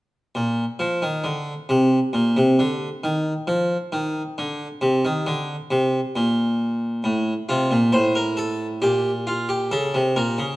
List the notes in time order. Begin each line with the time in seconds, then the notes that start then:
0.35 A#2
0.79 F3
1.02 D#3
1.24 D3
1.69 C3
2.13 A#2
2.37 C3
2.59 D3
3.04 D#3
3.47 F3
3.92 D#3
4.38 D3
4.81 C3
5.05 D#3
5.27 D3
5.71 C3
6.16 A#2
7.04 A2
7.49 C3 F4
7.71 A#2
7.92 A2 C5
8.15 A#4
8.37 A4
8.82 A#2 G4
9.27 F4
9.49 G4
9.72 C#3 A4
9.94 C3
10.16 A#2 A#4
10.38 C#3